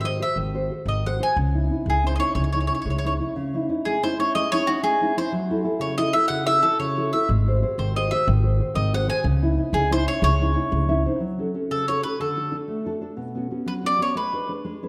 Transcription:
Already playing: G#1 D#3
0.01 F#4 G#4 C5 E5
0.05 D#5
0.19 F#4 G#4 C5 E5
0.36 G#1 D#3
0.54 F#4 G#4 C5
0.70 F#4 G#4 C5
0.86 G#1 D#3 D#5
1.05 F#4 G#4 C5 F#5
1.19 F#4 G#4 C5 G#5
1.36 C#2 C#3
1.54 C#4 D#4 E4
1.70 C#4 D#4 E4
1.86 C#2 G#3 G#4
2.04 C#4 D#4 E4 C5
2.16 C#4 D#4 D#5
2.20 E4 C#5
2.35 C#2 G#3 C#5
2.44 C#5
2.52 C#4 D#4 E4 C#5
2.60 C#5
2.67 C#4 D#4 E4 C#5
2.75 C#5
2.82 C#2 G#3 C#5
2.90 C#5
2.98 C#5
3.03 C#4 D#4 E4 C#5
3.19 C#4 D#4 E4
3.36 C#3
3.54 C#4 D#4 E4
3.69 C#4 D#4 E4
3.85 G#3 G#4
4.03 C#4 D#4 E4 C5
4.19 C#4 D#4 E4 C#5
4.35 G#3 D#5
4.52 C#4 D#4 E4 C#5
4.67 C#4 D#4 E4 F#4
4.83 G#3 G#4
5.01 C#4 D#4 E4
5.17 C#4 D#4 E4 C5
5.32 F#3
5.50 E4 F#4 A4
5.64 E4 F#4 A4
5.79 C#3 C#5
5.98 E4 F#4 A4 D#5
6.13 E4 F#4 A4 E5
6.28 C#3 F#5
6.46 E4 F#4 A4 E5
6.63 E4 F#4 A4
6.79 C#3 C#5
6.97 E4 F#4 A4
7.13 E4 F#4 A4 E5
7.29 G#1 G#3
7.47 F#4 G#4 C5
7.62 F#4 G#4 C5
7.78 G#1 D#3 C5
7.96 F#4 G#4 C5 D#5
8.11 F#4 G#4 C5 E5
8.27 G#1 D#3
8.43 F#4 G#4 C5
8.60 F#4 G#4 C5
8.74 G#1 D#3 D#5
8.93 F#4 G#4 C5 F#5
9.07 F#4 G#4 C5 G#5
9.24 C#2 C#3
9.42 C#4 D#4 E4
9.57 C#4 D#4 E4
9.72 C#2 G#3 G#4
9.90 C#4 D#4 E4 C5
10.06 C#4 D#4 E4 C#5
10.22 C#2 G#3 C#5
10.41 C#4 D#4 E4
10.56 C#4 D#4 E4
10.71 C#2 G#3
10.88 C#4 D#4 E4 E5
11.05 C#4 D#4 E4 C5
11.20 F#3
11.38 C#4 F#4 A4
11.54 C#4 F#4 A4
11.71 C#3 A4
11.88 C#4 F#4 A4 C#5
12.03 C#4 F#4 A4 B4
12.20 D3 A4
12.36 D4 F#4 A4
12.51 D4 F#4 A4
12.68 A3
12.85 D4 F#4 A4
13.01 D4 F#4 A4
13.17 B2
13.35 B3 C#4 F#4
13.51 B3 C#4 F#4
13.66 F#3 B4
13.83 B3 C#4 F#4 D5
13.98 B3 C#4 F#4 C#5
14.15 G#3 B4
14.33 D4 G#4 B4
14.49 D4 G#4 B4
14.64 G#3
14.83 D4 G#4 B4

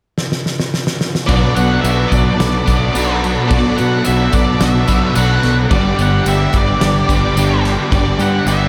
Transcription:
0.18 snare
0.32 snare
0.46 snare
0.60 snare
0.74 snare
0.87 snare
1.01 snare
1.15 snare
1.27 B1 B2 F#3 B3 D4 F#4 A4 D5 F#5 B5, kick, tambourine, crash
1.55 B1 F#3 B3 D4 F#4 F#5, tambourine, crash
1.81 B1 B2 F#3 B3 D4 E5, tambourine, crash
1.86 F#4
2.08 B3 D5, crash
2.12 B1 F#3, kick, tambourine
2.39 B1 B2 F#3 B3 D4 F#4, snare, tambourine, crash
2.67 B1 B2 F#3 B3, kick, tambourine, crash
2.94 B1 B2 F#3 B3 D4 F#4, tambourine, crash
3.22 F#3 B3, crash
3.49 B1 B2 F#3 B3 D4 F#4 D5, kick, tambourine, crash
3.77 B2 F#3 B3 D4 F#4 F#5, tambourine, crash
4.04 B1 B2 F#3 B3 D4 F#4 E5, tambourine, crash
4.33 B1 F#3 B3 D5, kick, tambourine, crash
4.59 B1 B2 F#3 B3 D4 F#4 E5, snare, tambourine, crash
4.86 B1 B2 F#3 B3, kick, tambourine, crash
5.15 B1 B2 F#3 B3 D4 F#4 F#5, tambourine, crash
5.43 B1 F#3 B3, snare, crash
5.70 G1 G2 D3 G3 B3 D4 G4 D5 B5, kick, tambourine, crash
5.98 G1 D3 G3 B3 D4 G4, tambourine, crash
6.02 F#5
6.25 G1 G2 D3 G3 B3 D4 G4 E5, tambourine, crash
6.52 G1 D3 G3, kick, tambourine, crash
6.57 D5
6.80 G1 G2 D3 G3 B3 D4 G4, snare, tambourine, crash
7.08 G1 G2 D3 G3, kick, tambourine, crash
7.36 G1 G2 D3 G3 B3 D4 G4, tambourine, crash
7.63 D3 G3, snare, crash
7.90 G1 G2 D3 G3 B3 D4 G4, kick, tambourine, crash
7.95 D5
8.18 G2 D3 G3 B3 D4 G4 F#5, tambourine, crash
8.45 G1 G2 D3 G3 B3 D4 G4 E5, tambourine, crash
8.50 G3

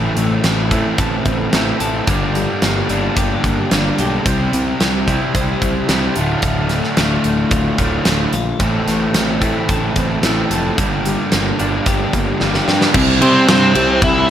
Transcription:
Already playing: A2 E3 A3 C4 E4 A4
0.17 A1 A3, closed hi-hat
0.44 A1 C4, snare, closed hi-hat
0.71 A2 E3 A3 C4 E4 A4, kick, closed hi-hat
0.98 A1 A4, kick, closed hi-hat
1.25 A1 C4, kick, closed hi-hat
1.52 A1 A2 E3 A3 C4 E4 A4, snare, closed hi-hat
1.80 A1 A4, closed hi-hat
2.07 G1 G2 D3 G3 A#3 D4 G4, kick, closed hi-hat
2.35 G3, closed hi-hat
2.62 G1 A#3, snare, closed hi-hat
2.89 G1 G2 D3 G3 A#3 D4 G4, closed hi-hat
3.16 G1 G4, kick, closed hi-hat
3.44 G1 A#3, kick, closed hi-hat
3.71 G1 G2 D3 G3 A#3 D4 G4, snare, closed hi-hat
3.98 B1 G4, closed hi-hat
4.25 C2 C3 G3 C4 E4 G4 C5, kick, closed hi-hat
4.53 C2 C4, closed hi-hat
4.80 C2 E4, snare, closed hi-hat
5.07 C3 G3 C4 E4 G4 C5, kick, closed hi-hat
5.35 C2 C5, kick, closed hi-hat
5.62 C2 E4, kick, closed hi-hat
5.89 C2 C3 G3 C4 E4 G4 C5, snare, closed hi-hat
6.15 D1 D2 A2 D3 A3 F4, closed hi-hat
6.42 D1 D2, kick, closed hi-hat
6.69 A2, snare, closed hi-hat
6.84 snare
6.97 D1 D2 A2 D3 A3 F4, snare, closed hi-hat
7.24 D1 A3, closed hi-hat
7.51 D1 F4, kick, closed hi-hat
7.78 D1 D2 A2 D3 A3 F4, kick, closed hi-hat
8.05 D1 A3, snare, closed hi-hat
8.33 A#1 F4, closed hi-hat
8.59 A1 A2 E3 A3 C4 E4 A4, kick, closed hi-hat
8.88 A1 A3, snare, closed hi-hat
9.14 A1 C4, snare, closed hi-hat
9.41 A2 E3 A3 C4 E4 A4, kick, closed hi-hat
9.69 A1 A4, kick, closed hi-hat
9.96 A1 C4, kick, closed hi-hat
10.23 A1 A2 E3 A3 C4 E4 A4, snare, closed hi-hat
10.51 F1 A4, closed hi-hat
10.77 G1 G2 D3 G3 A#3 D4 G4, kick, closed hi-hat
11.05 G3, closed hi-hat
11.32 G1 A#3, snare, closed hi-hat
11.59 G1 G2 D3 G3 A#3 D4 G4, closed hi-hat
11.86 G1 G4, kick, closed hi-hat
12.13 G1 A#3, kick, closed hi-hat
12.40 G1 G2 D3 G3 A#3 D4 G4, snare
12.54 snare
12.68 G2 G4, snare
12.81 snare
12.94 C2 C3 G3 C4, kick, crash
13.22 C3 G3 C4, ride
13.48 G2 C3 G3 C4, snare, ride
13.75 C2 C3 G3 C4, ride
14.02 C2 C3 G3 C4 E4, kick, ride

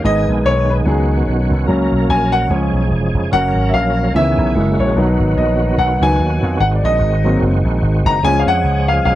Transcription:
Already playing: D#3
0.04 G#1 G#3 B3 D#4 G#4 D#5
0.28 A#1
0.45 B1 C#5
0.70 B4
0.85 C#2 F#3 B3 C#4 D#4 F#4 G#4
1.27 B1
1.51 C2
1.66 C#2 F#3 A#3 C#4 A#4
1.92 B1
2.09 A#1 G#5
2.32 F#5
2.50 C#2 F3 G#3 C#4 G#4 C#5
2.73 B1
2.91 E1
3.14 F1
3.32 F#1 F#3 A#3 C#4 A#4 F#5
3.56 G#1
3.69 E5
3.73 A#1 F5
4.14 C#2 C#3 D#3 E3 B3 G#4 E5
4.38 B1
4.55 F#1 G#3 A#3 E4 F#4
4.79 A#1 C#5
4.96 B1 D#3 F#3 B3 D#4
5.19 G#1
5.36 A#1 D#5
5.78 B1 F#5
6.01 C#2 F#3 B3 D#4 G#5
6.19 D#2
6.43 F2
6.60 G#1 G#3 C4 F#5
6.75 D5
6.83 A#1 D#5
7.00 G#1
7.24 F#3 A#3 C4
7.41 F#1
7.65 A#1
7.82 G#1
8.05 F#1 A#5
8.23 C#2 F3 G#3 C#4 G#4 G#5
8.39 F5
8.46 F2 F#5
8.64 C#2
8.88 F5
9.05 B1 F5

